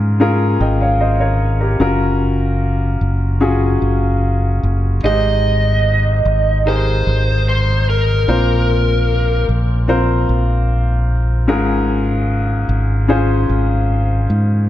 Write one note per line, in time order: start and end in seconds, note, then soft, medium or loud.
0.00 0.57 G#2 medium
0.00 1.83 G#2 medium
0.00 0.12 C#4 medium
0.00 0.13 F4 medium
0.00 0.13 G#4 medium
0.00 0.13 A#4 medium
0.20 1.72 C#4 medium
0.20 1.72 F4 medium
0.20 0.61 G#4 medium
0.20 0.61 A#4 medium
0.60 1.76 G#1 medium
0.60 0.80 D#5 soft
0.60 0.80 G5 medium
0.81 1.00 C#5 soft
0.81 1.00 F5 medium
1.00 1.20 C5 soft
1.00 1.19 D#5 medium
1.20 1.59 A#4 soft
1.20 1.58 C#5 medium
1.61 1.99 G4 soft
1.61 1.79 A#4 soft
1.80 2.97 F#1 medium
1.80 3.33 C#4 medium
1.80 3.33 F4 medium
1.80 3.34 F#4 medium
1.80 3.34 A#4 medium
3.01 3.78 F#1 medium
3.40 4.96 C#4 medium
3.40 4.96 F4 medium
3.40 4.96 F#4 medium
3.40 4.96 G#4 medium
3.82 4.59 F#1 medium
4.63 5.01 F#1 medium
5.03 6.22 G#1 medium
5.03 6.22 G#2 soft
5.03 6.58 D#4 medium
5.03 6.58 G4 soft
5.03 6.58 G#4 soft
5.03 6.59 C5 medium
5.03 6.72 D#5 medium
6.25 7.03 G#1 medium
6.66 8.20 D#4 medium
6.66 8.20 G4 soft
6.66 8.20 G#4 soft
6.66 8.21 A#4 medium
6.66 7.48 C5 medium
7.07 8.24 G#1 medium
7.49 7.89 C5 medium
7.90 9.46 A#4 medium
8.28 9.45 A#1 medium
8.28 9.45 A#2 soft
8.28 9.81 C4 medium
8.28 9.81 F4 medium
8.28 9.81 A#4 soft
8.28 9.81 C5 medium
9.49 10.25 A#1 medium
9.88 11.40 C4 medium
9.88 11.41 F4 medium
9.88 11.41 A#4 medium
9.88 11.41 C5 medium
10.29 11.49 A#1 medium
11.48 12.65 G#1 medium
11.48 12.65 G#2 medium
11.48 13.01 C#4 medium
11.48 13.01 F4 medium
11.48 13.01 G#4 medium
11.48 13.02 A#4 medium
12.69 13.46 G#1 medium
13.08 14.62 C#4 medium
13.08 14.62 F4 medium
13.08 14.62 G#4 medium
13.08 14.63 C5 medium
13.49 14.26 G#1 medium
14.30 14.68 G#2 medium